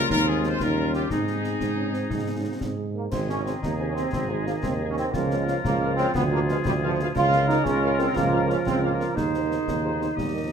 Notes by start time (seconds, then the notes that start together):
Already playing: G3 F4
0.09 D#2 G#3 C4 D#4 A#4, concert bass drum, snare
0.27 G#4
0.43 C5, snare
0.60 D#2 G3 C#4 D#4 A#4, concert bass drum, snare
0.94 G4, snare
1.10 G#2 G#3 C4 D#4 G#4, concert bass drum, snare
1.27 snare
1.44 snare
1.60 G#2 C4, concert bass drum, snare
1.77 C#4
1.93 C4, snare
2.10 G#2 D#4, concert bass drum, snare
2.39 C#4
2.46 C4
2.61 G#2 C4, concert bass drum, snare
2.77 G#3
2.94 A#3
3.11 G#1 C4 D#4 G#4, concert bass drum, snare, crash
3.28 C#4 D#4 G#4 C5 G#5, snare
3.44 C4 D#4 G#4 C5 G#5, snare
3.62 D#2 C3 D#4, concert bass drum, snare
3.78 D#4 G#4 C5 G#5
3.89 C#4
3.95 C4 D#4 G#4 C5 G#5, snare
4.13 G#1 D#3 C4, concert bass drum, snare
4.30 G#3 D#4 G#4 C5 G#5
4.46 A#3 D#4 G#4 C5 G#5, snare
4.62 D#2 C4, concert bass drum, snare
4.80 D#4 G#4 C5 G#5
4.90 C#4
4.97 C4 D#4 G#4 C5 G#5, snare
5.13 C#2 F3 A#3 F4 A#4, concert bass drum, snare
5.31 F4 A#4 C#5 F5, snare
5.39 G#3
5.46 A#3 F4 A#4 C#5 F5, snare
5.64 C#2 F3 A#3, concert bass drum, snare
5.81 F4 A#4 C#5 F5
5.97 C4 F4 A#4 C#5 F5, snare
6.14 D2 B3 G#4, concert bass drum, snare
6.32 A#3 F4 G#4 B4 F5
6.49 G#3 F4 G#4 B4 F5, snare
6.64 D2 G3, concert bass drum, snare
6.83 F3 F4 G#4 B4 F5
6.99 F4 G#4 B4 F5, snare
7.14 C#2 C#3 F4 A#4, concert bass drum, snare, crash
7.32 F4 A#4 F5, snare
7.48 D#4 F4 A#4 F5, snare
7.64 C#2 C#4, concert bass drum, snare
7.83 F4 A#4 F5
7.99 C4 F4 A#4 F5, snare
8.15 C#2 F3 A#3, concert bass drum, snare
8.31 F4 A#4 F5
8.47 F4 A#4 F5, snare
8.51 C#4
8.66 C#2 C4, concert bass drum, snare
8.82 A#3 F4 A#4 F5
8.98 F4 A#4 F5, snare
9.16 D#2 D#3 D#4 G#4 C5, concert bass drum, snare
9.32 D#4 G#4 C5, snare
9.49 D#4 G#4 C5, snare
9.66 D#2 D#3, concert bass drum, snare
9.83 F3 D#4 G#4 C5
9.99 D#3 D#4 G#4 C5, snare
10.16 D#2 G3 G4 D#5, concert bass drum, snare
10.34 D#4 G4 A#4 D#5
10.44 F3